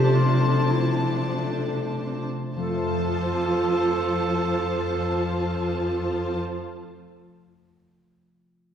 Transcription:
Already playing: cello section C3, harp C3 A4 C5, viola section F3 D4, clarinet G4, violin section C5 A5
0.14 harp A3, clarinet F4
0.70 clarinet E4, harp C5
1.30 harp A3
1.93 harp C4
2.55 cello section F2, viola section F3 F4, harp F3, clarinet A4, violin section C5 A5
2.63 harp A3
2.70 harp F4
2.77 harp C5
2.84 harp F5

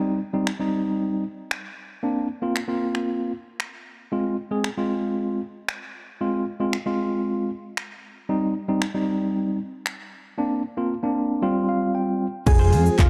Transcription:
Already playing: tine electric piano G3 C4 D#4
0.34 tine electric piano G3 C4 D#4
0.47 finger snap
0.60 tine electric piano G3 C4 D#4
1.51 finger snap
2.03 tine electric piano A#3 C4 D4
2.42 tine electric piano A#3 C4 F4
2.56 finger snap
2.68 tine electric piano A#3 C4 F4
2.95 finger snap
3.60 finger snap
4.12 tine electric piano G#3 C4 F4
4.51 tine electric piano G#3 C4 G#4
4.64 finger snap
4.77 tine electric piano G#3 C4 F4
5.69 finger snap
6.21 tine electric piano G#3 C4 F4
6.60 tine electric piano G#3 C4 F4
6.73 finger snap
6.86 tine electric piano G#3 C4 F4
7.77 finger snap
8.29 tine electric piano G3 C4 D#4
8.68 tine electric piano G3 C4 D#4
8.82 finger snap
8.94 tine electric piano G3 C4 D#4
9.86 finger snap
10.38 tine electric piano A#3 C4 D4
10.77 tine electric piano A#3 C4 F4
11.03 tine electric piano A#3 C4 D4
11.42 tine electric piano G3 C4 F4
11.69 tine electric piano F5
11.95 tine electric piano G5
12.46 analog synth bass F1, analog synth pad F3 C4 G#4, tine electric piano G#3 C4 F4 G#4, alto saxophone G#4, muted clean electric guitar stroke, kick, closed hi-hat, crash, shaker
12.59 clean electric guitar F4 G#4 C5, shaker
12.72 analog synth bass F2, clean electric guitar F4 G#4 C5, open hi-hat, shaker
12.86 muted clean electric guitar stroke, shaker
12.99 analog synth bass F1, alto saxophone F4, muted clean electric guitar stroke, kick, clap, closed hi-hat, shaker

